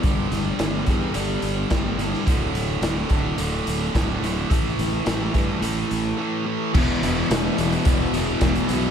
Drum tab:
CC |----------------|----------------|----------------|x---------------|
HH |x-x-x-x-x-x-x-x-|x-x-x-x-x-x-x-x-|x-x-x-x-x-x-----|--x-x-xxx-x-xxx-|
SD |--o-o-------o--o|----o-------o---|--o-o-----------|----o-------o---|
BD |o-----o-----o---|o-----o-----o---|o-----o---------|o-------o---o---|